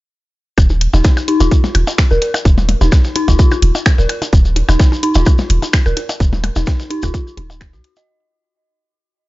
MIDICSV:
0, 0, Header, 1, 6, 480
1, 0, Start_track
1, 0, Tempo, 468750
1, 591, Time_signature, 4, 2, 24, 8
1, 9508, End_track
2, 0, Start_track
2, 0, Title_t, "Synth bell"
2, 0, Program_c, 0, 98
2, 959, Note_on_c, 0, 63, 73
2, 1009, Note_off_c, 0, 63, 0
2, 1311, Note_on_c, 0, 63, 96
2, 1398, Note_off_c, 0, 63, 0
2, 1438, Note_on_c, 0, 65, 77
2, 1514, Note_off_c, 0, 65, 0
2, 2158, Note_on_c, 0, 70, 73
2, 2234, Note_off_c, 0, 70, 0
2, 2878, Note_on_c, 0, 63, 75
2, 2929, Note_off_c, 0, 63, 0
2, 3231, Note_on_c, 0, 63, 98
2, 3318, Note_off_c, 0, 63, 0
2, 3359, Note_on_c, 0, 65, 75
2, 3435, Note_off_c, 0, 65, 0
2, 4079, Note_on_c, 0, 70, 80
2, 4155, Note_off_c, 0, 70, 0
2, 4799, Note_on_c, 0, 63, 74
2, 4849, Note_off_c, 0, 63, 0
2, 5150, Note_on_c, 0, 63, 99
2, 5237, Note_off_c, 0, 63, 0
2, 5279, Note_on_c, 0, 65, 75
2, 5355, Note_off_c, 0, 65, 0
2, 5998, Note_on_c, 0, 70, 76
2, 6074, Note_off_c, 0, 70, 0
2, 6717, Note_on_c, 0, 63, 76
2, 6769, Note_off_c, 0, 63, 0
2, 7069, Note_on_c, 0, 63, 97
2, 7157, Note_off_c, 0, 63, 0
2, 7198, Note_on_c, 0, 65, 79
2, 7274, Note_off_c, 0, 65, 0
2, 7550, Note_on_c, 0, 63, 74
2, 7608, Note_off_c, 0, 63, 0
2, 7918, Note_on_c, 0, 66, 81
2, 7969, Note_off_c, 0, 66, 0
2, 8157, Note_on_c, 0, 75, 76
2, 8234, Note_off_c, 0, 75, 0
2, 9508, End_track
3, 0, Start_track
3, 0, Title_t, "Sub bass"
3, 0, Program_c, 1, 38
3, 591, Note_on_c, 1, 27, 102
3, 893, Note_off_c, 1, 27, 0
3, 958, Note_on_c, 1, 27, 89
3, 1034, Note_off_c, 1, 27, 0
3, 1439, Note_on_c, 1, 27, 94
3, 1515, Note_off_c, 1, 27, 0
3, 1791, Note_on_c, 1, 27, 88
3, 1878, Note_off_c, 1, 27, 0
3, 2159, Note_on_c, 1, 27, 82
3, 2235, Note_off_c, 1, 27, 0
3, 2512, Note_on_c, 1, 27, 96
3, 2813, Note_off_c, 1, 27, 0
3, 2879, Note_on_c, 1, 27, 96
3, 2955, Note_off_c, 1, 27, 0
3, 3359, Note_on_c, 1, 27, 93
3, 3435, Note_off_c, 1, 27, 0
3, 3710, Note_on_c, 1, 27, 88
3, 3797, Note_off_c, 1, 27, 0
3, 4078, Note_on_c, 1, 27, 82
3, 4155, Note_off_c, 1, 27, 0
3, 4432, Note_on_c, 1, 27, 95
3, 4733, Note_off_c, 1, 27, 0
3, 4799, Note_on_c, 1, 27, 92
3, 4875, Note_off_c, 1, 27, 0
3, 5279, Note_on_c, 1, 27, 94
3, 5355, Note_off_c, 1, 27, 0
3, 5631, Note_on_c, 1, 27, 86
3, 5717, Note_off_c, 1, 27, 0
3, 5999, Note_on_c, 1, 27, 84
3, 6075, Note_off_c, 1, 27, 0
3, 6351, Note_on_c, 1, 27, 99
3, 6653, Note_off_c, 1, 27, 0
3, 6719, Note_on_c, 1, 27, 91
3, 6795, Note_off_c, 1, 27, 0
3, 7199, Note_on_c, 1, 27, 93
3, 7275, Note_off_c, 1, 27, 0
3, 7550, Note_on_c, 1, 27, 86
3, 7919, Note_on_c, 1, 37, 87
3, 7934, Note_off_c, 1, 27, 0
3, 7995, Note_off_c, 1, 37, 0
3, 9508, End_track
4, 0, Start_track
4, 0, Title_t, "Percussion blips"
4, 590, Note_on_c, 9, 76, 70
4, 693, Note_off_c, 9, 76, 0
4, 718, Note_on_c, 9, 61, 46
4, 821, Note_off_c, 9, 61, 0
4, 958, Note_on_c, 9, 60, 83
4, 1060, Note_off_c, 9, 60, 0
4, 1070, Note_on_c, 9, 61, 47
4, 1172, Note_off_c, 9, 61, 0
4, 1198, Note_on_c, 9, 76, 68
4, 1300, Note_off_c, 9, 76, 0
4, 1438, Note_on_c, 9, 60, 41
4, 1438, Note_on_c, 9, 61, 44
4, 1540, Note_off_c, 9, 60, 0
4, 1540, Note_off_c, 9, 61, 0
4, 1678, Note_on_c, 9, 64, 85
4, 1781, Note_off_c, 9, 64, 0
4, 1790, Note_on_c, 9, 61, 45
4, 1790, Note_on_c, 9, 76, 66
4, 1893, Note_off_c, 9, 61, 0
4, 1893, Note_off_c, 9, 76, 0
4, 1919, Note_on_c, 9, 60, 85
4, 2021, Note_off_c, 9, 60, 0
4, 2158, Note_on_c, 9, 61, 45
4, 2261, Note_off_c, 9, 61, 0
4, 2399, Note_on_c, 9, 60, 81
4, 2399, Note_on_c, 9, 76, 65
4, 2501, Note_off_c, 9, 60, 0
4, 2501, Note_off_c, 9, 76, 0
4, 2511, Note_on_c, 9, 61, 49
4, 2613, Note_off_c, 9, 61, 0
4, 2639, Note_on_c, 9, 64, 83
4, 2741, Note_off_c, 9, 64, 0
4, 2751, Note_on_c, 9, 64, 83
4, 2854, Note_off_c, 9, 64, 0
4, 2879, Note_on_c, 9, 60, 39
4, 2879, Note_on_c, 9, 61, 46
4, 2982, Note_off_c, 9, 60, 0
4, 2982, Note_off_c, 9, 61, 0
4, 2991, Note_on_c, 9, 76, 67
4, 3093, Note_off_c, 9, 76, 0
4, 3232, Note_on_c, 9, 61, 45
4, 3334, Note_off_c, 9, 61, 0
4, 3360, Note_on_c, 9, 60, 83
4, 3463, Note_off_c, 9, 60, 0
4, 3600, Note_on_c, 9, 61, 49
4, 3600, Note_on_c, 9, 76, 66
4, 3703, Note_off_c, 9, 61, 0
4, 3703, Note_off_c, 9, 76, 0
4, 3840, Note_on_c, 9, 60, 76
4, 3942, Note_off_c, 9, 60, 0
4, 3952, Note_on_c, 9, 61, 50
4, 4054, Note_off_c, 9, 61, 0
4, 4192, Note_on_c, 9, 76, 64
4, 4294, Note_off_c, 9, 76, 0
4, 4319, Note_on_c, 9, 60, 42
4, 4319, Note_on_c, 9, 61, 46
4, 4422, Note_off_c, 9, 60, 0
4, 4422, Note_off_c, 9, 61, 0
4, 4671, Note_on_c, 9, 61, 47
4, 4773, Note_off_c, 9, 61, 0
4, 4799, Note_on_c, 9, 60, 77
4, 4799, Note_on_c, 9, 76, 65
4, 4901, Note_off_c, 9, 60, 0
4, 4901, Note_off_c, 9, 76, 0
4, 5038, Note_on_c, 9, 61, 48
4, 5140, Note_off_c, 9, 61, 0
4, 5279, Note_on_c, 9, 60, 76
4, 5381, Note_off_c, 9, 60, 0
4, 5390, Note_on_c, 9, 61, 48
4, 5390, Note_on_c, 9, 76, 62
4, 5493, Note_off_c, 9, 61, 0
4, 5493, Note_off_c, 9, 76, 0
4, 5518, Note_on_c, 9, 64, 86
4, 5620, Note_off_c, 9, 64, 0
4, 5759, Note_on_c, 9, 60, 37
4, 5759, Note_on_c, 9, 61, 46
4, 5862, Note_off_c, 9, 60, 0
4, 5862, Note_off_c, 9, 61, 0
4, 6000, Note_on_c, 9, 76, 64
4, 6102, Note_off_c, 9, 76, 0
4, 6111, Note_on_c, 9, 61, 46
4, 6213, Note_off_c, 9, 61, 0
4, 6239, Note_on_c, 9, 60, 77
4, 6342, Note_off_c, 9, 60, 0
4, 6479, Note_on_c, 9, 61, 50
4, 6479, Note_on_c, 9, 64, 80
4, 6582, Note_off_c, 9, 61, 0
4, 6582, Note_off_c, 9, 64, 0
4, 6591, Note_on_c, 9, 64, 80
4, 6591, Note_on_c, 9, 76, 64
4, 6694, Note_off_c, 9, 64, 0
4, 6694, Note_off_c, 9, 76, 0
4, 6719, Note_on_c, 9, 60, 77
4, 6822, Note_off_c, 9, 60, 0
4, 6832, Note_on_c, 9, 61, 47
4, 6934, Note_off_c, 9, 61, 0
4, 7200, Note_on_c, 9, 60, 37
4, 7200, Note_on_c, 9, 61, 46
4, 7200, Note_on_c, 9, 76, 66
4, 7302, Note_off_c, 9, 60, 0
4, 7302, Note_off_c, 9, 61, 0
4, 7302, Note_off_c, 9, 76, 0
4, 7552, Note_on_c, 9, 61, 49
4, 7654, Note_off_c, 9, 61, 0
4, 7679, Note_on_c, 9, 60, 76
4, 7781, Note_off_c, 9, 60, 0
4, 7790, Note_on_c, 9, 76, 65
4, 7893, Note_off_c, 9, 76, 0
4, 7919, Note_on_c, 9, 61, 50
4, 8021, Note_off_c, 9, 61, 0
4, 8158, Note_on_c, 9, 60, 77
4, 8261, Note_off_c, 9, 60, 0
4, 9508, End_track
5, 0, Start_track
5, 0, Title_t, "Shekere"
5, 595, Note_on_c, 9, 82, 65
5, 698, Note_off_c, 9, 82, 0
5, 710, Note_on_c, 9, 82, 38
5, 812, Note_off_c, 9, 82, 0
5, 959, Note_on_c, 9, 82, 80
5, 1061, Note_off_c, 9, 82, 0
5, 1066, Note_on_c, 9, 82, 69
5, 1168, Note_off_c, 9, 82, 0
5, 1203, Note_on_c, 9, 82, 37
5, 1305, Note_off_c, 9, 82, 0
5, 1438, Note_on_c, 9, 82, 82
5, 1541, Note_off_c, 9, 82, 0
5, 1553, Note_on_c, 9, 82, 64
5, 1656, Note_off_c, 9, 82, 0
5, 1684, Note_on_c, 9, 82, 39
5, 1786, Note_off_c, 9, 82, 0
5, 1919, Note_on_c, 9, 82, 79
5, 2021, Note_off_c, 9, 82, 0
5, 2032, Note_on_c, 9, 82, 69
5, 2134, Note_off_c, 9, 82, 0
5, 2159, Note_on_c, 9, 82, 38
5, 2261, Note_off_c, 9, 82, 0
5, 2408, Note_on_c, 9, 82, 76
5, 2510, Note_off_c, 9, 82, 0
5, 2515, Note_on_c, 9, 82, 63
5, 2618, Note_off_c, 9, 82, 0
5, 2641, Note_on_c, 9, 82, 43
5, 2743, Note_off_c, 9, 82, 0
5, 2881, Note_on_c, 9, 82, 78
5, 2983, Note_off_c, 9, 82, 0
5, 2989, Note_on_c, 9, 82, 67
5, 3091, Note_off_c, 9, 82, 0
5, 3115, Note_on_c, 9, 82, 43
5, 3218, Note_off_c, 9, 82, 0
5, 3365, Note_on_c, 9, 82, 79
5, 3468, Note_off_c, 9, 82, 0
5, 3469, Note_on_c, 9, 82, 68
5, 3571, Note_off_c, 9, 82, 0
5, 3597, Note_on_c, 9, 82, 39
5, 3699, Note_off_c, 9, 82, 0
5, 3842, Note_on_c, 9, 82, 83
5, 3944, Note_off_c, 9, 82, 0
5, 3948, Note_on_c, 9, 82, 68
5, 4051, Note_off_c, 9, 82, 0
5, 4086, Note_on_c, 9, 82, 40
5, 4189, Note_off_c, 9, 82, 0
5, 4323, Note_on_c, 9, 82, 81
5, 4425, Note_off_c, 9, 82, 0
5, 4441, Note_on_c, 9, 82, 65
5, 4543, Note_off_c, 9, 82, 0
5, 4556, Note_on_c, 9, 82, 40
5, 4658, Note_off_c, 9, 82, 0
5, 4803, Note_on_c, 9, 82, 79
5, 4905, Note_off_c, 9, 82, 0
5, 4917, Note_on_c, 9, 82, 71
5, 5019, Note_off_c, 9, 82, 0
5, 5047, Note_on_c, 9, 82, 40
5, 5149, Note_off_c, 9, 82, 0
5, 5268, Note_on_c, 9, 82, 74
5, 5371, Note_off_c, 9, 82, 0
5, 5383, Note_on_c, 9, 82, 64
5, 5486, Note_off_c, 9, 82, 0
5, 5510, Note_on_c, 9, 82, 39
5, 5613, Note_off_c, 9, 82, 0
5, 5763, Note_on_c, 9, 82, 76
5, 5865, Note_off_c, 9, 82, 0
5, 5871, Note_on_c, 9, 82, 76
5, 5973, Note_off_c, 9, 82, 0
5, 6005, Note_on_c, 9, 82, 42
5, 6107, Note_off_c, 9, 82, 0
5, 6240, Note_on_c, 9, 82, 87
5, 6343, Note_off_c, 9, 82, 0
5, 6357, Note_on_c, 9, 82, 64
5, 6459, Note_off_c, 9, 82, 0
5, 6477, Note_on_c, 9, 82, 40
5, 6580, Note_off_c, 9, 82, 0
5, 6717, Note_on_c, 9, 82, 85
5, 6819, Note_off_c, 9, 82, 0
5, 6823, Note_on_c, 9, 82, 59
5, 6925, Note_off_c, 9, 82, 0
5, 6956, Note_on_c, 9, 82, 39
5, 7059, Note_off_c, 9, 82, 0
5, 7193, Note_on_c, 9, 82, 86
5, 7296, Note_off_c, 9, 82, 0
5, 7313, Note_on_c, 9, 82, 67
5, 7415, Note_off_c, 9, 82, 0
5, 7449, Note_on_c, 9, 82, 44
5, 7551, Note_off_c, 9, 82, 0
5, 7683, Note_on_c, 9, 82, 79
5, 7785, Note_off_c, 9, 82, 0
5, 7792, Note_on_c, 9, 82, 65
5, 7894, Note_off_c, 9, 82, 0
5, 7921, Note_on_c, 9, 82, 41
5, 8023, Note_off_c, 9, 82, 0
5, 8154, Note_on_c, 9, 82, 86
5, 8257, Note_off_c, 9, 82, 0
5, 9508, End_track
6, 0, Start_track
6, 0, Title_t, "Drums"
6, 591, Note_on_c, 9, 36, 122
6, 591, Note_on_c, 9, 42, 89
6, 693, Note_off_c, 9, 36, 0
6, 693, Note_off_c, 9, 42, 0
6, 831, Note_on_c, 9, 42, 97
6, 934, Note_off_c, 9, 42, 0
6, 959, Note_on_c, 9, 38, 57
6, 1061, Note_off_c, 9, 38, 0
6, 1070, Note_on_c, 9, 38, 117
6, 1070, Note_on_c, 9, 42, 88
6, 1071, Note_on_c, 9, 36, 112
6, 1172, Note_off_c, 9, 38, 0
6, 1172, Note_off_c, 9, 42, 0
6, 1173, Note_off_c, 9, 36, 0
6, 1198, Note_on_c, 9, 38, 39
6, 1301, Note_off_c, 9, 38, 0
6, 1310, Note_on_c, 9, 42, 65
6, 1311, Note_off_c, 9, 42, 0
6, 1311, Note_on_c, 9, 42, 95
6, 1414, Note_off_c, 9, 42, 0
6, 1439, Note_on_c, 9, 42, 36
6, 1541, Note_off_c, 9, 42, 0
6, 1550, Note_on_c, 9, 42, 90
6, 1551, Note_on_c, 9, 36, 121
6, 1652, Note_off_c, 9, 42, 0
6, 1653, Note_off_c, 9, 36, 0
6, 1679, Note_on_c, 9, 38, 54
6, 1781, Note_off_c, 9, 38, 0
6, 1791, Note_on_c, 9, 42, 86
6, 1893, Note_off_c, 9, 42, 0
6, 1919, Note_on_c, 9, 42, 44
6, 2022, Note_off_c, 9, 42, 0
6, 2031, Note_on_c, 9, 36, 120
6, 2031, Note_on_c, 9, 38, 115
6, 2031, Note_on_c, 9, 46, 82
6, 2032, Note_on_c, 9, 26, 104
6, 2133, Note_off_c, 9, 38, 0
6, 2133, Note_off_c, 9, 46, 0
6, 2134, Note_off_c, 9, 26, 0
6, 2134, Note_off_c, 9, 36, 0
6, 2271, Note_on_c, 9, 38, 52
6, 2271, Note_on_c, 9, 42, 71
6, 2272, Note_off_c, 9, 42, 0
6, 2272, Note_on_c, 9, 42, 97
6, 2374, Note_off_c, 9, 38, 0
6, 2374, Note_off_c, 9, 42, 0
6, 2400, Note_on_c, 9, 42, 36
6, 2502, Note_off_c, 9, 42, 0
6, 2511, Note_on_c, 9, 42, 90
6, 2512, Note_on_c, 9, 36, 127
6, 2614, Note_off_c, 9, 36, 0
6, 2614, Note_off_c, 9, 42, 0
6, 2639, Note_on_c, 9, 38, 52
6, 2741, Note_off_c, 9, 38, 0
6, 2751, Note_on_c, 9, 42, 67
6, 2752, Note_off_c, 9, 42, 0
6, 2752, Note_on_c, 9, 42, 95
6, 2854, Note_off_c, 9, 42, 0
6, 2879, Note_on_c, 9, 38, 57
6, 2981, Note_off_c, 9, 38, 0
6, 2991, Note_on_c, 9, 38, 112
6, 2991, Note_on_c, 9, 42, 91
6, 2992, Note_on_c, 9, 36, 125
6, 3093, Note_off_c, 9, 38, 0
6, 3093, Note_off_c, 9, 42, 0
6, 3094, Note_off_c, 9, 36, 0
6, 3120, Note_on_c, 9, 38, 59
6, 3222, Note_off_c, 9, 38, 0
6, 3232, Note_on_c, 9, 42, 99
6, 3334, Note_off_c, 9, 42, 0
6, 3359, Note_on_c, 9, 42, 38
6, 3360, Note_on_c, 9, 36, 63
6, 3462, Note_off_c, 9, 36, 0
6, 3462, Note_off_c, 9, 42, 0
6, 3471, Note_on_c, 9, 42, 88
6, 3472, Note_on_c, 9, 36, 125
6, 3574, Note_off_c, 9, 36, 0
6, 3574, Note_off_c, 9, 42, 0
6, 3711, Note_on_c, 9, 42, 90
6, 3814, Note_off_c, 9, 42, 0
6, 3951, Note_on_c, 9, 26, 106
6, 3951, Note_on_c, 9, 38, 115
6, 3951, Note_on_c, 9, 42, 90
6, 3952, Note_on_c, 9, 36, 127
6, 4053, Note_off_c, 9, 38, 0
6, 4053, Note_off_c, 9, 42, 0
6, 4054, Note_off_c, 9, 26, 0
6, 4054, Note_off_c, 9, 36, 0
6, 4079, Note_on_c, 9, 38, 56
6, 4181, Note_off_c, 9, 38, 0
6, 4191, Note_on_c, 9, 38, 37
6, 4191, Note_on_c, 9, 42, 70
6, 4192, Note_off_c, 9, 42, 0
6, 4192, Note_on_c, 9, 42, 102
6, 4294, Note_off_c, 9, 38, 0
6, 4294, Note_off_c, 9, 42, 0
6, 4320, Note_on_c, 9, 42, 38
6, 4422, Note_off_c, 9, 42, 0
6, 4430, Note_on_c, 9, 42, 88
6, 4432, Note_on_c, 9, 36, 126
6, 4533, Note_off_c, 9, 42, 0
6, 4534, Note_off_c, 9, 36, 0
6, 4670, Note_on_c, 9, 42, 71
6, 4671, Note_off_c, 9, 42, 0
6, 4671, Note_on_c, 9, 42, 101
6, 4774, Note_off_c, 9, 42, 0
6, 4798, Note_on_c, 9, 38, 58
6, 4901, Note_off_c, 9, 38, 0
6, 4910, Note_on_c, 9, 38, 124
6, 4910, Note_on_c, 9, 42, 91
6, 4911, Note_on_c, 9, 36, 125
6, 5012, Note_off_c, 9, 38, 0
6, 5012, Note_off_c, 9, 42, 0
6, 5014, Note_off_c, 9, 36, 0
6, 5039, Note_on_c, 9, 38, 40
6, 5141, Note_off_c, 9, 38, 0
6, 5150, Note_on_c, 9, 42, 69
6, 5152, Note_off_c, 9, 42, 0
6, 5152, Note_on_c, 9, 42, 94
6, 5254, Note_off_c, 9, 42, 0
6, 5280, Note_on_c, 9, 42, 38
6, 5383, Note_off_c, 9, 42, 0
6, 5391, Note_on_c, 9, 36, 124
6, 5391, Note_on_c, 9, 42, 86
6, 5493, Note_off_c, 9, 42, 0
6, 5494, Note_off_c, 9, 36, 0
6, 5519, Note_on_c, 9, 38, 56
6, 5621, Note_off_c, 9, 38, 0
6, 5631, Note_on_c, 9, 42, 73
6, 5632, Note_off_c, 9, 42, 0
6, 5632, Note_on_c, 9, 42, 93
6, 5734, Note_off_c, 9, 42, 0
6, 5759, Note_on_c, 9, 42, 47
6, 5862, Note_off_c, 9, 42, 0
6, 5871, Note_on_c, 9, 26, 104
6, 5871, Note_on_c, 9, 36, 127
6, 5871, Note_on_c, 9, 38, 123
6, 5871, Note_on_c, 9, 46, 81
6, 5973, Note_off_c, 9, 38, 0
6, 5973, Note_off_c, 9, 46, 0
6, 5974, Note_off_c, 9, 26, 0
6, 5974, Note_off_c, 9, 36, 0
6, 6111, Note_on_c, 9, 38, 55
6, 6111, Note_on_c, 9, 42, 70
6, 6112, Note_off_c, 9, 42, 0
6, 6112, Note_on_c, 9, 42, 100
6, 6213, Note_off_c, 9, 38, 0
6, 6214, Note_off_c, 9, 42, 0
6, 6240, Note_on_c, 9, 42, 39
6, 6342, Note_off_c, 9, 42, 0
6, 6351, Note_on_c, 9, 36, 127
6, 6351, Note_on_c, 9, 42, 93
6, 6453, Note_off_c, 9, 36, 0
6, 6453, Note_off_c, 9, 42, 0
6, 6479, Note_on_c, 9, 38, 52
6, 6581, Note_off_c, 9, 38, 0
6, 6591, Note_on_c, 9, 42, 73
6, 6694, Note_off_c, 9, 42, 0
6, 6719, Note_on_c, 9, 38, 55
6, 6821, Note_off_c, 9, 38, 0
6, 6831, Note_on_c, 9, 36, 122
6, 6831, Note_on_c, 9, 38, 125
6, 6831, Note_on_c, 9, 42, 91
6, 6933, Note_off_c, 9, 38, 0
6, 6933, Note_off_c, 9, 42, 0
6, 6934, Note_off_c, 9, 36, 0
6, 6960, Note_on_c, 9, 38, 56
6, 7062, Note_off_c, 9, 38, 0
6, 7071, Note_on_c, 9, 42, 94
6, 7072, Note_off_c, 9, 42, 0
6, 7072, Note_on_c, 9, 42, 69
6, 7174, Note_off_c, 9, 42, 0
6, 7199, Note_on_c, 9, 36, 67
6, 7199, Note_on_c, 9, 42, 38
6, 7302, Note_off_c, 9, 36, 0
6, 7302, Note_off_c, 9, 42, 0
6, 7311, Note_on_c, 9, 36, 127
6, 7311, Note_on_c, 9, 42, 85
6, 7413, Note_off_c, 9, 36, 0
6, 7414, Note_off_c, 9, 42, 0
6, 7551, Note_on_c, 9, 42, 74
6, 7654, Note_off_c, 9, 42, 0
6, 7791, Note_on_c, 9, 26, 101
6, 7791, Note_on_c, 9, 36, 126
6, 7791, Note_on_c, 9, 38, 116
6, 7791, Note_on_c, 9, 42, 93
6, 7893, Note_off_c, 9, 36, 0
6, 7893, Note_off_c, 9, 38, 0
6, 7893, Note_off_c, 9, 42, 0
6, 7894, Note_off_c, 9, 26, 0
6, 7920, Note_on_c, 9, 38, 55
6, 8022, Note_off_c, 9, 38, 0
6, 8030, Note_on_c, 9, 42, 102
6, 8032, Note_off_c, 9, 42, 0
6, 8032, Note_on_c, 9, 38, 38
6, 8032, Note_on_c, 9, 42, 71
6, 8134, Note_off_c, 9, 38, 0
6, 8134, Note_off_c, 9, 42, 0
6, 8159, Note_on_c, 9, 42, 37
6, 8261, Note_off_c, 9, 42, 0
6, 9508, End_track
0, 0, End_of_file